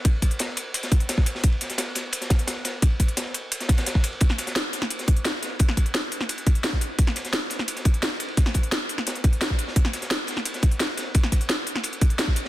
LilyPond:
\new DrumStaff \with { instrumentName = "Drums" } \drummode { \time 4/4 \tempo 4 = 173 <hh bd cymr>8 <hh bd cymr>16 hh16 <hh cymr sn>8 <hh cymr>8 <hh cymr>16 <hh sn>16 <hh bd cymr>16 hh16 <hh cymr sn>16 <bd sn>16 <hh cymr>16 sn16 | <hh bd cymr>16 cymr16 <hh cymr sn>16 <hh sn>16 <hh cymr sn>8 <hh cymr sn>8 <hh cymr>16 <hh sn>16 <hh bd cymr sn>16 hh16 <hh cymr sn>8 <hh cymr sn>8 | <hh bd cymr>8 <hh bd cymr>16 hh16 <hh cymr sn>8 <hh cymr>8 <hh cymr>16 <hh sn>16 <hh bd cymr sn>16 <hh cymr sn>16 <hh cymr sn>16 <bd sn>16 <hh cymr>16 cymr16 | <hh bd cymr>16 <cymr sn>16 <hh cymr sn>16 <hh sn>16 <hh cymr sn>8 <hh cymr sn>16 sn16 <hh cymr>16 <hh sn>16 <hh bd cymr>16 hh16 <hh cymr sn>8 <hh cymr sn>8 |
<hh bd cymr>16 sn16 <hh bd cymr>16 hh16 <hh cymr sn>8 <hh cymr>16 sn16 <hh cymr>16 hh16 <hh bd cymr>16 hh16 <hh cymr sn>16 <bd sn>16 <hh cymr>8 | <hh bd cymr>16 <cymr sn>16 <hh cymr sn>16 <hh sn>16 <hh cymr sn>8 <hh cymr sn>16 sn16 <hh cymr>16 <hh sn>16 <hh bd cymr>16 hh16 <hh cymr sn>8 <hh cymr>16 cymr16 | <hh bd cymr sn>16 sn16 <hh bd cymr>16 hh16 <hh cymr sn>8 <hh cymr>16 sn16 <hh cymr sn>16 hh16 <hh bd cymr>16 hh16 <hh cymr sn>16 <bd sn>16 <hh cymr>16 sn16 | <hh bd cymr>16 <cymr sn>16 <hh cymr sn>16 <hh sn>16 <hh cymr sn>8 <hh cymr sn>16 sn16 <hh cymr>16 <hh sn>16 <hh bd cymr>16 hh16 <hh cymr sn>8 <hh cymr sn>8 |
<hh bd cymr>16 sn16 <hh bd cymr>16 hh16 <hh cymr sn>8 <hh cymr>16 sn16 <hh cymr>16 hh16 <hh bd cymr>16 hh16 <hh cymr sn>16 <bd sn>16 <hh cymr>16 sn16 | }